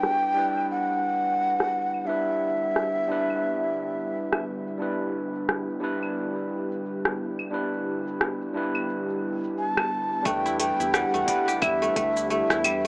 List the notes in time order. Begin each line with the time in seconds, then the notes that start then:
Already playing: D3 G3 A3 B3 D4 E4 F#4 G4 B4 G5
0.03 cross-stick, cabasa
0.24 cabasa
0.34 G3 D4 E4
0.38 B4
0.57 cabasa, claves
0.71 F#5, cabasa
0.92 cabasa
1.26 cabasa
1.40 cabasa
1.60 cross-stick
1.94 cabasa, claves
2.05 G3 D4 E4 E5
2.09 B4
2.29 cabasa
2.63 cabasa
2.76 cross-stick, cabasa
3.07 G3 D4 E4
3.11 B4
3.30 cabasa, claves
3.45 cabasa
3.65 cabasa
3.99 cabasa
4.13 cabasa
4.32 cross-stick, cabasa, claves
4.67 cabasa
4.78 G3 D4 E4, cabasa
4.82 B4
5.01 cabasa
5.35 cabasa
5.49 cross-stick, cabasa
5.70 cabasa
5.80 G3 D4 E4 B4
6.03 cabasa, claves
6.17 cabasa
6.37 cabasa
6.72 cabasa
6.86 cabasa
7.05 cross-stick, cabasa
7.39 cabasa, claves
7.50 G3 D4 E4 B4, cabasa
7.74 cabasa
8.07 cabasa
8.21 cross-stick, cabasa
8.42 cabasa
8.53 G3 D4 E4 B4
8.75 cabasa, claves
8.89 cabasa
9.10 cabasa
9.44 cabasa
9.58 A5, cabasa
9.77 cross-stick, cabasa, claves
10.12 cabasa
10.23 E2 D3 G3 A3 B3 D4 E4 G4 G5, kick, cabasa
10.27 B4
10.46 E4, cabasa
10.60 A3 G5, open hi-hat
10.80 E2 E4, cabasa
10.94 G3 F#5, cross-stick, cabasa
11.14 E2 A3, cabasa
11.26 G3 D4 E4 B4, kick, open hi-hat
11.48 G4, cabasa
11.62 E2 E4 E5, kick, cabasa, claves
11.82 A3, cabasa
11.96 D2 A3, kick, open hi-hat
12.17 E4, cabasa
12.30 A3 E5, cabasa
12.50 E2 E4, cross-stick, cabasa
12.64 G3, open hi-hat, claves